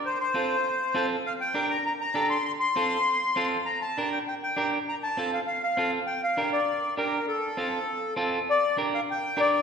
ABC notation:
X:1
M:4/4
L:1/8
Q:1/4=199
K:Gm
V:1 name="Accordion"
c c6 z | f g2 b b b2 c' | c' c'6 z | b a2 g g g2 z |
b a2 f f f2 z | g f2 d3 B2 | A6 z2 | d2 z f g2 d2 |]
V:2 name="Clean electric guitar"
z2 [CFA] z3 [CFA] z | z2 [DGB] z3 [DGA] z | z2 [CFA] z3 [CFA] z | z2 [DGB] z3 [DGB] z |
z2 [CFA] z3 [CFA] z | z2 [DGB] z3 [DGB] z | z2 [CFA] z3 [CFA] z | z2 [DGB] z3 [DGB] z |]